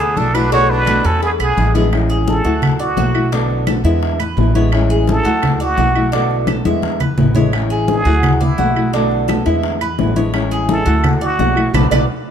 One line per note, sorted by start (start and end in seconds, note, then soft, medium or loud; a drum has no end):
0.00 0.13 D2 loud
0.00 0.19 B3 medium
0.00 0.19 G#4 medium
0.00 0.33 A4 medium
0.17 0.99 B1 medium
0.17 0.33 F#3 soft
0.17 0.34 A3 medium
0.17 0.34 D4 medium
0.17 0.34 E4 soft
0.17 0.33 F#4 medium
0.17 0.36 A4 medium
0.17 cowbell medium
0.17 high conga medium
0.34 0.52 F#3 medium
0.34 0.51 A3 medium
0.34 0.52 D4 medium
0.34 0.51 E4 medium
0.34 0.51 F#4 medium
0.34 0.52 B4 loud
0.34 0.51 D5 medium
0.34 cowbell medium
0.34 high conga soft
0.34 claves medium
0.52 0.86 B2 medium
0.52 0.86 D3 medium
0.52 0.86 A3 medium
0.52 0.87 B3 medium
0.52 0.86 D4 medium
0.52 0.71 F#4 medium
0.52 0.87 F#4 medium
0.52 0.71 C#5 loud
0.52 cowbell loud
0.52 high conga soft
0.70 1.07 D4 medium
0.70 1.07 B4 loud
0.70 high conga soft
0.87 1.04 B2 medium
0.87 1.04 D3 medium
0.87 1.04 A3 medium
0.87 1.05 B3 medium
0.87 1.04 F#4 medium
0.87 cowbell medium
0.87 high conga loud
0.87 claves medium
1.04 1.37 E2 loud
1.04 1.22 A3 soft
1.04 1.22 B3 soft
1.04 1.22 C#4 medium
1.04 1.21 F#4 medium
1.04 1.22 A4 medium
1.04 1.38 B4 medium
1.04 high conga soft
1.22 1.31 B3 medium
1.22 1.31 G#4 medium
1.22 muted nylon-string guitar stroke medium
1.22 cowbell loud
1.22 high conga soft
1.40 1.56 B1 medium
1.40 1.72 B3 medium
1.40 1.74 G#4 medium
1.40 1.73 G#4 medium
1.40 high conga soft
1.40 claves medium
1.57 2.39 A1 medium
1.57 1.74 D3 soft
1.57 1.74 G#3 soft
1.57 1.74 B3 medium
1.57 1.73 E4 medium
1.57 cowbell medium
1.57 high conga medium
1.75 1.91 D3 medium
1.75 1.91 G#3 medium
1.75 1.92 B3 medium
1.75 1.91 E4 medium
1.75 1.92 G#4 medium
1.75 cowbell medium
1.75 high conga medium
1.91 2.26 E3 medium
1.91 2.27 G#3 medium
1.91 2.27 C#4 medium
1.91 2.27 E4 medium
1.91 high bongo medium
1.91 high conga soft
1.91 claves medium
2.10 2.44 G#4 medium
2.10 high bongo soft
2.10 high conga soft
2.28 2.44 E3 soft
2.28 2.44 G#3 medium
2.28 2.45 C#4 medium
2.28 2.44 E4 medium
2.28 2.77 A4 medium
2.28 high bongo medium
2.28 high conga medium
2.45 2.93 D2 medium
2.45 2.79 F#3 medium
2.45 2.79 A3 medium
2.45 2.79 E4 medium
2.45 2.79 F#4 medium
2.45 high bongo soft
2.45 high conga soft
2.62 high bongo medium
2.62 high conga soft
2.62 low conga medium
2.62 claves medium
2.80 3.29 F#4 medium
2.80 2.97 D5 medium
2.80 muted nylon-string guitar stroke medium
2.80 high bongo soft
2.80 high conga soft
2.97 3.79 B1 medium
2.97 3.14 F#3 soft
2.97 3.14 A3 soft
2.97 3.14 E4 soft
2.97 3.31 F#4 medium
2.97 3.13 F#4 medium
2.97 high bongo soft
2.97 low bongo medium
2.97 high conga medium
3.14 3.32 F#3 medium
3.14 3.31 A3 medium
3.14 3.32 E4 medium
3.14 3.31 F#4 medium
3.14 high conga soft
3.14 claves medium
3.32 3.66 B2 medium
3.32 3.66 D3 medium
3.32 3.66 A3 medium
3.32 3.67 B3 medium
3.32 3.66 D4 medium
3.32 3.67 F#4 medium
3.32 high bongo medium
3.32 high conga soft
3.49 high bongo soft
3.49 high conga soft
3.67 3.84 D3 soft
3.67 3.84 A3 soft
3.67 3.84 B3 medium
3.67 3.84 F#4 medium
3.67 3.84 A4 medium
3.67 high bongo medium
3.67 high conga medium
3.67 claves medium
3.84 4.33 E2 medium
3.84 4.19 D3 medium
3.84 4.19 G#3 medium
3.84 4.19 B3 medium
3.84 4.19 E4 medium
3.84 4.19 E5 medium
3.84 high bongo soft
3.84 high conga soft
4.02 high bongo medium
4.02 high conga soft
4.20 4.54 B4 medium
4.20 muted nylon-string guitar stroke medium
4.20 high bongo soft
4.20 high conga soft
4.20 claves medium
4.37 5.19 A1 medium
4.37 4.55 D3 soft
4.37 4.55 G#3 soft
4.37 4.55 B3 medium
4.37 4.54 E4 medium
4.37 high bongo soft
4.37 low bongo medium
4.37 high conga medium
4.55 4.72 D3 medium
4.55 4.72 G#3 medium
4.55 4.72 B3 medium
4.55 4.72 E4 medium
4.55 4.89 C#5 medium
4.55 high conga medium
4.72 5.07 E3 medium
4.72 5.07 G#3 medium
4.72 5.08 C#4 medium
4.72 5.08 E4 medium
4.72 high bongo medium
4.72 high conga soft
4.72 claves medium
4.90 5.24 G#4 medium
4.90 high bongo soft
4.90 high conga soft
5.08 5.25 E3 soft
5.08 5.25 G#3 soft
5.08 5.25 C#4 medium
5.08 5.25 E4 soft
5.08 5.58 A4 loud
5.08 high bongo medium
5.08 high conga medium
5.25 5.74 D2 loud
5.25 5.60 F#3 medium
5.25 5.60 A3 medium
5.25 5.60 E4 medium
5.25 5.59 F#4 medium
5.25 5.60 F#4 medium
5.25 high bongo soft
5.25 high conga soft
5.43 high bongo medium
5.43 high conga soft
5.43 low conga medium
5.43 claves medium
5.60 6.10 F#4 medium
5.60 5.77 D5 medium
5.60 muted nylon-string guitar stroke medium
5.60 high bongo soft
5.60 high conga soft
5.77 6.59 B1 medium
5.77 5.95 F#3 soft
5.77 5.95 A3 soft
5.77 5.95 E4 soft
5.77 6.12 F#4 medium
5.77 5.94 F#4 medium
5.77 high bongo soft
5.77 low bongo medium
5.77 high conga medium
5.95 6.13 F#3 medium
5.95 6.13 A3 medium
5.95 6.13 E4 medium
5.95 6.12 F#4 medium
5.95 high conga soft
5.95 claves medium
6.12 6.47 B2 medium
6.12 6.47 D3 medium
6.12 6.47 A3 medium
6.12 6.48 B3 medium
6.12 6.46 D4 medium
6.12 6.48 F#4 medium
6.12 high bongo medium
6.12 high conga soft
6.30 high bongo soft
6.30 high conga soft
6.47 6.65 D3 soft
6.47 6.65 A3 medium
6.47 6.65 B3 medium
6.47 6.65 F#4 medium
6.47 6.65 A4 medium
6.47 high bongo medium
6.47 high conga medium
6.47 claves medium
6.65 7.14 E2 medium
6.65 7.00 D3 medium
6.65 7.00 G#3 medium
6.65 7.00 B3 medium
6.65 7.00 E4 medium
6.65 6.99 E5 medium
6.65 high bongo soft
6.65 high conga medium
6.82 high bongo medium
6.82 high conga medium
7.00 7.34 B4 medium
7.00 muted nylon-string guitar stroke medium
7.00 high bongo soft
7.00 low conga medium
7.00 claves medium
7.18 8.00 A1 medium
7.18 7.35 D3 soft
7.18 7.35 G#3 soft
7.18 7.35 B3 soft
7.18 7.35 E4 medium
7.18 high bongo soft
7.18 low bongo medium
7.18 low conga loud
7.35 7.53 D3 medium
7.35 7.53 G#3 medium
7.35 7.53 B3 medium
7.35 7.53 E4 medium
7.35 7.70 C#5 medium
7.35 low conga medium
7.52 7.87 E3 medium
7.52 7.88 G#3 medium
7.52 7.88 C#4 medium
7.52 7.89 E4 medium
7.52 high bongo medium
7.52 high conga soft
7.52 claves medium
7.70 8.04 G#4 medium
7.70 high bongo soft
7.70 high conga soft
7.88 8.05 E3 soft
7.88 8.05 G#3 soft
7.88 8.06 C#4 medium
7.88 8.06 E4 medium
7.88 8.43 G#4 loud
7.88 high bongo medium
7.88 high conga medium
8.05 8.54 D2 medium
8.05 8.40 F#3 medium
8.05 8.41 A3 medium
8.05 8.41 E4 medium
8.05 8.40 F#4 medium
8.05 high bongo soft
8.05 high conga soft
8.23 high bongo medium
8.23 high conga soft
8.23 low conga medium
8.23 claves medium
8.41 8.94 E4 medium
8.41 8.58 D5 medium
8.41 muted nylon-string guitar stroke medium
8.41 high bongo soft
8.41 high conga soft
8.41 low conga medium
8.58 9.40 B1 medium
8.58 8.76 F#3 soft
8.58 8.76 A3 soft
8.58 8.76 E4 medium
8.58 8.92 F#4 medium
8.58 8.75 F#4 medium
8.58 high bongo soft
8.58 low bongo medium
8.58 high conga medium
8.76 8.94 F#3 medium
8.76 8.93 A3 medium
8.76 8.93 E4 medium
8.76 8.93 F#4 medium
8.76 high conga soft
8.76 claves medium
8.93 9.28 B2 medium
8.93 9.28 D3 medium
8.93 9.28 A3 medium
8.93 9.29 B3 medium
8.93 9.28 D4 medium
8.93 9.29 F#4 medium
8.93 high bongo medium
8.93 high conga soft
9.11 high bongo soft
9.11 high conga soft
9.28 9.46 D3 soft
9.28 9.46 A3 medium
9.28 9.45 B3 medium
9.28 9.45 F#4 medium
9.28 9.45 A4 medium
9.28 high bongo medium
9.28 high conga medium
9.28 claves medium
9.46 9.95 E2 loud
9.46 9.81 D3 medium
9.46 9.81 G#3 medium
9.46 9.81 B3 medium
9.46 9.80 E4 medium
9.46 9.80 E5 medium
9.46 high bongo soft
9.46 high conga soft
9.63 high bongo medium
9.63 high conga soft
9.81 10.15 B4 medium
9.81 muted nylon-string guitar stroke medium
9.81 high bongo soft
9.81 high conga soft
9.81 claves medium
9.98 10.81 A1 medium
9.98 10.16 D3 soft
9.98 10.16 G#3 medium
9.98 10.16 B3 medium
9.98 10.15 E4 medium
9.98 high bongo soft
9.98 low bongo medium
9.98 high conga medium
10.16 10.33 D3 medium
10.16 10.33 G#3 medium
10.16 10.34 B3 medium
10.16 10.33 E4 medium
10.16 10.50 C#5 medium
10.16 high conga medium
10.34 10.67 E3 medium
10.34 10.68 G#3 medium
10.34 10.69 C#4 medium
10.34 10.69 E4 medium
10.34 high bongo medium
10.34 high conga soft
10.34 claves medium
10.51 10.86 G#4 medium
10.51 high bongo soft
10.51 high conga soft
10.68 10.86 E3 soft
10.68 10.86 G#3 medium
10.68 10.86 C#4 medium
10.68 10.86 E4 medium
10.68 11.19 A4 medium
10.68 high bongo medium
10.68 high conga medium
10.86 11.35 D2 loud
10.86 11.21 F#3 medium
10.86 11.21 A3 medium
10.86 11.21 E4 medium
10.86 11.20 F#4 medium
10.86 11.21 F#4 medium
10.86 high bongo soft
10.86 high conga soft
11.04 high bongo medium
11.04 high conga soft
11.04 low conga medium
11.04 claves medium
11.21 11.71 F#4 medium
11.21 11.39 D5 medium
11.21 muted nylon-string guitar stroke medium
11.21 high bongo soft
11.21 high conga soft
11.39 11.72 B1 medium
11.39 11.56 F#3 soft
11.39 11.56 A3 medium
11.39 11.55 E4 medium
11.39 11.73 F#4 medium
11.39 11.55 F#4 medium
11.39 high bongo soft
11.39 low bongo medium
11.39 high conga medium
11.56 11.74 F#3 medium
11.56 11.73 A3 medium
11.56 11.74 E4 medium
11.56 11.73 F#4 medium
11.56 high conga soft
11.56 claves medium
11.74 11.87 B1 medium
11.74 11.86 F#3 medium
11.74 11.86 A3 loud
11.74 11.86 B3 loud
11.74 11.86 A4 loud
11.74 11.86 B4 medium
11.74 11.86 D5 medium
11.74 high bongo loud
11.74 low conga loud
11.74 claves loud
11.91 12.05 B1 loud
11.91 12.03 F#3 medium
11.91 12.03 A3 loud
11.91 12.03 B3 medium
11.91 12.03 A4 medium
11.91 12.03 B4 medium
11.91 12.03 D5 loud
11.91 high bongo loud
11.91 low conga medium
11.91 claves loud